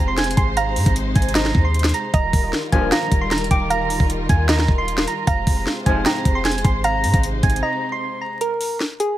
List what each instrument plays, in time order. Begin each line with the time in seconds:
Already playing: 808-style bass F1, string section C3 G#3 F4 C5, synth pluck G5
0.08 synth keys C6
0.17 synth keys G#5, snare, closed hi-hat
0.24 closed hi-hat
0.31 closed hi-hat
0.37 808-style bass G#1, synth pluck G#5, synth keys C6, kick, closed hi-hat
0.57 string section D#4, synth pluck F5, synth keys A#5, closed hi-hat
0.76 808-style bass G#2, closed hi-hat, open hi-hat
0.86 808-style bass G#1, kick, closed hi-hat
0.96 closed hi-hat
1.16 808-style bass G#1, synth keys G#5, kick, closed hi-hat
1.22 closed hi-hat
1.29 closed hi-hat
1.35 synth pluck D#5, synth keys A#5, snare, closed hi-hat
1.45 snare
1.55 808-style bass D#2, kick
1.65 synth keys C6
1.74 closed hi-hat
1.79 closed hi-hat
1.84 snare, closed hi-hat
1.89 closed hi-hat
1.94 synth keys A#5, closed hi-hat
2.14 808-style bass D#1, string section D#3 G3 F4 A#4, synth pluck D#5, synth keys A#5, kick, closed hi-hat
2.33 808-style bass D#1, kick, open hi-hat
2.53 snare
2.72 808-style bass D#1, brass ensemble G2 A#2 F3, synth keys G#5, kick, closed hi-hat
2.92 synth pluck F5, synth keys A#5, snare, closed hi-hat
3.12 808-style bass D#1, kick, closed hi-hat
3.21 synth keys C6
3.31 synth keys A#5, snare, closed hi-hat
3.38 closed hi-hat
3.44 closed hi-hat
3.51 808-style bass D#1, synth pluck G5, synth keys D6, kick, closed hi-hat
3.70 synth pluck F5, synth keys A#5, closed hi-hat
3.90 open hi-hat
4.00 808-style bass D#1, kick
4.10 closed hi-hat
4.29 808-style bass D#2, synth keys G#5, kick, closed hi-hat
4.49 synth pluck D#5, synth keys A#5, snare, closed hi-hat
4.59 snare
4.68 808-style bass D#1, kick
4.78 synth keys C6
4.88 closed hi-hat
4.98 snare
5.08 synth keys A#5, closed hi-hat
5.27 808-style bass F1, string section C3 G#3 C5, synth pluck F5, synth keys A#5, kick, closed hi-hat
5.47 808-style bass F1, kick, open hi-hat
5.67 snare
5.86 808-style bass F1, brass ensemble G#2 C3 F3, synth keys G#5, kick, closed hi-hat
6.06 synth pluck G5, synth keys A#5, snare, closed hi-hat
6.25 808-style bass F1, kick, closed hi-hat
6.35 synth keys C6
6.45 synth keys G#5, snare, closed hi-hat
6.52 closed hi-hat
6.58 closed hi-hat
6.64 808-style bass G#1, synth pluck G#5, synth keys C6, kick, closed hi-hat
6.84 string section C3 D#4, synth pluck F5, synth keys A#5, closed hi-hat
7.04 808-style bass G#2, closed hi-hat, open hi-hat
7.14 808-style bass G#1, kick, closed hi-hat
7.23 closed hi-hat
7.43 808-style bass G#1, synth keys G#5, kick, closed hi-hat
7.50 closed hi-hat
7.56 closed hi-hat
7.63 synth pluck D#5, synth keys A#5
7.92 synth keys C6
8.21 synth keys A#5
8.41 synth keys A#4, closed hi-hat
8.61 open hi-hat
8.80 snare
9.00 synth keys G#4, closed hi-hat